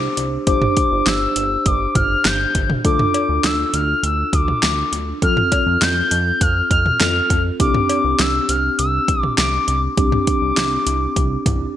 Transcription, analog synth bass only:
0.17 0.38 C2 loud
0.47 0.68 G1 loud
0.92 1.02 G1 loud
1.06 1.27 G1 loud
1.36 1.57 G1 loud
1.66 1.87 G1 loud
1.95 2.16 G1 loud
2.25 2.46 G1 loud
2.55 2.76 G1 loud
2.85 3.05 D2 loud
3.29 3.39 D2 loud
3.44 3.65 D2 loud
3.73 3.94 D2 loud
4.03 4.24 D2 loud
4.33 4.54 D2 loud
4.63 4.83 D2 loud
4.92 5.13 D2 medium
5.22 5.43 F2 loud
5.67 5.77 F2 loud
5.81 6.02 F2 loud
6.11 6.32 F2 loud
6.41 6.62 F2 loud
6.71 6.91 F2 loud
7.00 7.21 F2 loud
7.30 7.51 F2 loud
7.60 7.81 C2 loud
8.04 8.15 C2 loud
8.19 8.40 C2 loud
8.49 8.70 C2 loud
8.79 8.99 C2 loud
9.08 9.29 C2 loud
9.38 9.59 C2 loud
9.68 9.88 C2 loud
9.97 10.18 C2 loud
10.42 10.52 C2 loud
10.57 10.78 C2 loud
10.87 11.07 C2 loud
11.16 11.37 C2 loud
11.46 11.67 C2 loud

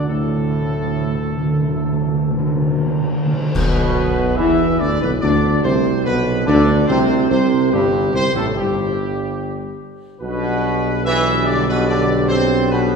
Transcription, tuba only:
0.09 3.18 D2 medium
3.55 4.35 B1 loud
4.38 4.77 E2 medium
4.81 5.00 D2 medium
5.02 5.21 B1 loud
5.23 5.61 D2 loud
5.64 6.08 C2 loud
6.06 6.47 B1 loud
6.47 6.86 D2 loud
6.89 7.28 C2 loud
7.31 7.70 C2 loud
7.73 8.12 G1 medium
8.14 8.34 C2 loud
8.34 8.54 A1 medium
8.55 9.76 G1 medium
10.22 12.96 B1 loud

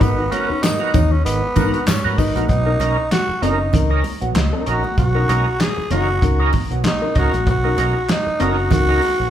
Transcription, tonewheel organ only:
0.00 0.17 G#2 medium
0.00 0.17 D#3 medium
0.18 0.24 F#4 soft
0.18 0.24 A#4 soft
0.31 0.48 B3 medium
0.31 0.49 F#4 medium
0.31 0.49 A#4 medium
0.62 0.80 G#2 medium
0.62 0.80 D#3 medium
0.79 0.93 B3 medium
0.79 0.92 F#4 medium
0.79 0.93 A#4 medium
0.94 1.01 F#4 soft
0.94 1.01 A#4 soft
1.25 1.42 G#2 medium
1.25 1.42 D#3 medium
1.56 1.73 B3 medium
1.56 1.72 F#4 medium
1.56 1.72 A#4 medium
1.73 1.79 F#4 soft
1.73 1.79 A#4 soft
2.04 2.18 B3 medium
2.04 2.18 F#4 medium
2.04 2.18 A#4 medium
2.18 2.35 G#2 medium
2.18 2.35 D#3 medium
2.36 2.49 B3 medium
2.36 2.49 F#4 medium
2.36 2.49 A#4 medium
2.50 2.66 B2 soft
2.50 2.66 F#3 medium
2.66 2.72 D#4 soft
2.66 2.72 A#4 soft
2.80 2.97 C#4 medium
2.80 2.97 D#4 medium
2.80 2.97 A#4 medium
3.41 3.59 C#4 medium
3.41 3.59 D#4 medium
3.41 3.59 A#4 loud
3.90 4.04 C#4 medium
3.90 4.04 D#4 medium
3.90 4.04 A#4 medium
4.21 4.35 B2 medium
4.21 4.35 F#3 medium
4.66 4.83 C#4 medium
4.66 4.84 D#4 medium
4.66 4.84 A#4 medium
4.98 5.15 B2 medium
4.98 5.15 F#3 medium
5.15 5.21 D#4 soft
5.15 5.21 A#4 soft
5.29 5.46 C#4 medium
5.29 5.46 D#4 medium
5.29 5.46 A#4 medium
5.91 6.08 C#4 medium
5.91 6.08 D#4 medium
5.91 6.08 A#4 medium
6.39 6.53 C#4 medium
6.39 6.53 D#4 medium
6.39 6.53 A#4 medium
6.71 6.84 B2 medium
6.71 6.84 F#3 medium
7.15 7.32 C#4 medium
7.15 7.32 D#4 medium
7.15 7.33 A#4 medium
7.46 7.64 B2 medium
7.46 7.64 F#3 medium
7.64 7.70 D#4 soft
7.64 7.70 A#4 soft
7.77 7.95 C#4 medium
7.77 7.95 D#4 medium
7.77 7.95 A#4 medium
8.40 8.57 C#4 medium
8.40 8.57 D#4 medium
8.40 8.57 A#4 medium
8.88 9.02 C#4 medium
8.88 9.02 D#4 medium
8.88 9.02 A#4 medium
9.20 9.30 B2 medium
9.20 9.30 F#3 medium

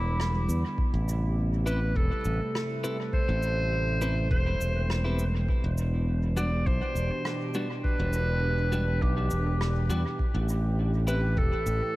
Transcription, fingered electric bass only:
0.00 0.46 E1 medium
0.49 0.62 E2 medium
0.94 1.93 A1 medium
1.96 2.10 E1 medium
2.25 2.39 A1 medium
3.29 4.28 A1 medium
4.31 4.57 E1 loud
4.60 5.46 E1 medium
5.64 6.64 E1 medium
6.66 6.80 B1 medium
6.95 7.09 E1 medium
8.00 8.99 E1 medium
9.02 9.28 B1 medium
9.31 9.87 E1 medium
9.89 10.03 E2 medium
10.35 11.34 A1 medium
11.37 11.51 E1 medium
11.66 11.80 A1 medium

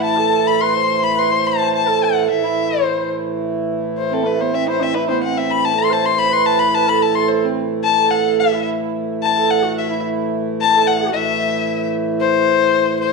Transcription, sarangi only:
0.00 0.19 E4 medium
0.17 0.63 A4 medium
0.62 0.77 B4 medium
0.75 1.17 C5 medium
1.17 1.32 B4 medium
1.30 1.89 C5 medium
1.87 2.42 A4 medium
2.43 3.23 E4 medium
4.11 4.25 C4 medium
4.24 4.41 A3 medium
4.40 4.54 B3 soft
4.52 4.69 C4 medium
4.67 4.82 E4 medium
4.80 4.97 C4 medium
4.95 5.11 E4 medium
5.09 5.24 B3 medium
5.23 5.76 C4 medium
5.76 5.92 A4 medium
5.90 6.17 C5 medium
6.17 6.33 C5 medium
6.32 6.73 B4 medium
6.74 6.89 B4 medium
6.88 7.15 A4 medium
7.16 7.46 A4 medium
7.44 7.58 C4 medium
7.99 8.55 A4 medium
8.54 8.81 E4 medium
9.37 9.64 A4 medium
9.62 9.92 F#4 medium
9.91 10.18 E4 soft
10.72 10.97 A4 medium
11.00 11.25 F#4 soft

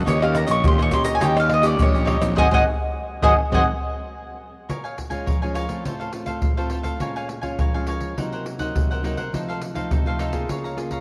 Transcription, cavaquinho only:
0.05 0.19 D#4 medium
0.05 0.20 G4 medium
0.05 0.20 C#5 medium
0.05 0.19 D#5 medium
0.20 0.33 G4 soft
0.20 0.33 C#5 soft
0.20 0.33 D#5 medium
0.34 muted cavaquinho stroke soft
0.47 0.77 G4 medium
0.47 0.76 C#5 medium
0.47 0.76 D#5 medium
0.78 0.90 G4 soft
0.78 0.91 C#5 soft
0.78 0.91 D#5 medium
0.91 1.05 D#4 medium
0.91 1.04 G4 soft
0.91 1.04 C#5 medium
0.91 1.03 D#5 medium
1.04 1.20 G4 medium
1.04 1.20 C#5 medium
1.04 1.19 D#5 medium
1.20 1.34 D#4 medium
1.20 1.35 G4 medium
1.20 1.35 C#5 medium
1.20 1.35 D#5 medium
1.36 1.48 G4 soft
1.36 1.48 C#5 soft
1.36 1.48 D#5 soft
1.49 muted cavaquinho stroke soft
1.62 1.77 G4 medium
1.62 1.77 C#5 medium
1.62 1.77 D#5 medium
1.78 1.92 D#4 soft
1.78 1.92 G4 medium
1.78 1.93 C#5 medium
1.78 1.92 D#5 medium
1.93 2.04 G4 soft
1.93 2.05 C#5 soft
1.93 2.05 D#5 medium
2.05 2.34 D#4 medium
2.05 2.35 G4 medium
2.05 2.35 C#5 medium
2.05 2.35 D#5 medium
2.36 2.46 G#4 loud
2.36 2.46 C5 loud
2.36 2.46 D#5 medium
2.51 2.61 G#4 loud
2.51 2.61 C5 medium
2.51 2.61 D#5 medium
3.22 3.32 G#4 medium
3.22 3.32 C5 medium
3.22 3.32 D#5 medium
3.52 3.62 G#4 medium
3.52 3.62 C5 medium
3.52 3.62 D#5 medium
4.69 4.82 A#4 soft
4.69 4.82 C#5 soft
4.69 4.83 F5 soft
4.69 4.83 G#5 soft
4.84 4.96 C#5 soft
4.84 4.97 F5 soft
4.84 4.97 G#5 medium
4.98 muted cavaquinho stroke soft
5.10 5.25 C#5 soft
5.10 5.25 F5 medium
5.10 5.24 G#5 medium
5.26 5.40 A#4 soft
5.26 5.40 C#5 soft
5.26 5.40 F5 soft
5.26 5.40 G#5 soft
5.42 5.53 C#5 soft
5.42 5.54 F5 medium
5.42 5.54 G#5 medium
5.54 5.83 A#4 medium
5.54 5.83 C#5 medium
5.54 5.83 F5 medium
5.54 5.83 G#5 medium
5.85 5.98 F4 soft
5.85 5.98 A4 soft
5.85 5.98 C5 soft
5.85 5.98 F5 soft
6.00 6.12 A4 soft
6.00 6.12 C5 soft
6.00 6.12 F5 medium
6.13 muted cavaquinho stroke soft
6.26 6.56 A4 soft
6.26 6.56 C5 soft
6.26 6.55 F5 medium
6.57 6.70 A4 soft
6.57 6.70 C5 medium
6.57 6.70 F5 medium
6.70 6.84 F4 soft
6.70 6.84 A4 soft
6.70 6.83 C5 soft
6.70 6.82 F5 soft
6.83 6.99 A4 soft
6.83 6.98 C5 soft
6.83 6.98 F5 medium
7.00 7.14 A#4 soft
7.00 7.14 C#5 soft
7.00 7.14 F5 soft
7.00 7.15 G#5 medium
7.16 7.28 C#5 soft
7.16 7.28 F5 medium
7.16 7.28 G#5 medium
7.29 muted cavaquinho stroke soft
7.41 7.57 C#5 soft
7.41 7.57 F5 medium
7.41 7.56 G#5 medium
7.59 7.72 A#4 soft
7.59 7.73 C#5 soft
7.59 7.73 F5 soft
7.59 7.73 G#5 soft
7.74 7.87 C#5 medium
7.74 7.87 F5 medium
7.74 7.87 G#5 medium
7.87 8.16 A#4 medium
7.87 8.16 C#5 medium
7.87 8.16 F5 medium
7.87 8.17 G#5 medium
8.17 8.31 D#4 soft
8.17 8.31 A#4 soft
8.17 8.31 C5 soft
8.17 8.31 F#5 soft
8.33 8.45 A#4 soft
8.33 8.45 C5 medium
8.33 8.45 F#5 medium
8.46 muted cavaquinho stroke soft
8.59 8.89 A#4 soft
8.59 8.89 C5 soft
8.59 8.88 F#5 medium
8.91 9.03 A#4 soft
8.91 9.04 C5 medium
8.91 9.04 F#5 medium
9.04 9.18 D#4 soft
9.04 9.18 A#4 soft
9.04 9.17 C5 medium
9.04 9.16 F#5 soft
9.17 9.33 A#4 soft
9.17 9.32 C5 medium
9.17 9.32 F#5 medium
9.34 9.47 D#4 soft
9.34 9.47 A4 soft
9.34 9.48 C5 soft
9.34 9.47 F5 soft
9.48 9.61 A4 soft
9.48 9.61 C5 medium
9.48 9.61 F5 medium
9.61 muted cavaquinho stroke soft
9.75 9.91 A4 medium
9.75 9.90 C5 medium
9.75 9.90 F5 medium
9.92 10.05 D#4 soft
9.92 10.05 A4 soft
9.92 10.06 C5 medium
9.92 10.06 F5 soft
10.07 10.18 A4 soft
10.07 10.19 C5 medium
10.07 10.19 F5 medium
10.19 10.48 D#4 medium
10.19 10.48 A4 medium
10.19 10.49 C5 medium
10.19 10.49 F5 medium
10.50 10.64 G#4 soft
10.50 10.64 C#5 soft
10.50 10.64 F5 soft
10.50 10.63 A#5 soft
10.64 10.78 C#5 soft
10.64 10.78 F5 soft
10.64 10.78 A#5 medium
10.79 muted cavaquinho stroke soft
10.92 11.01 C#5 soft
10.92 11.01 F5 medium
10.92 11.01 A#5 medium

